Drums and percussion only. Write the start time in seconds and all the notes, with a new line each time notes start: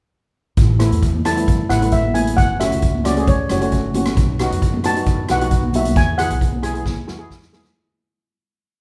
0.57 kick, closed hi-hat
0.80 cross-stick, closed hi-hat
0.92 closed hi-hat
1.03 kick, closed hi-hat
1.14 high conga
1.25 cross-stick, closed hi-hat, low conga
1.37 closed hi-hat
1.48 kick, closed hi-hat
1.70 cross-stick, closed hi-hat, low conga
1.82 closed hi-hat
1.92 kick, closed hi-hat
2.05 high conga
2.15 closed hi-hat, high conga, low conga
2.27 closed hi-hat, high conga
2.38 kick, closed hi-hat
2.61 cross-stick, closed hi-hat
2.72 closed hi-hat
2.82 kick, closed hi-hat
2.95 high conga
3.05 cross-stick, closed hi-hat, low conga
3.17 closed hi-hat
3.27 kick, closed hi-hat
3.49 cross-stick, closed hi-hat, low conga
3.62 closed hi-hat
3.72 kick, closed hi-hat
3.94 closed hi-hat, high conga, low conga
4.06 cross-stick, closed hi-hat, high conga
4.17 kick, closed hi-hat
4.39 cross-stick, closed hi-hat
4.52 closed hi-hat
4.62 kick, closed hi-hat
4.74 high conga
4.84 cross-stick, closed hi-hat
4.97 closed hi-hat
5.06 kick, closed hi-hat
5.29 cross-stick, closed hi-hat, low conga
5.41 closed hi-hat
5.51 kick, closed hi-hat
5.63 high conga
5.73 closed hi-hat, high conga, low conga
5.85 closed hi-hat, high conga
5.96 kick, closed hi-hat
6.19 cross-stick, closed hi-hat
6.30 closed hi-hat
6.41 kick, closed hi-hat
6.52 high conga
6.63 cross-stick, closed hi-hat, low conga
6.75 closed hi-hat
6.85 kick, snare, high conga
7.08 snare, low conga
7.31 kick, snare
7.42 snare
7.52 snare, high conga, low conga
7.65 snare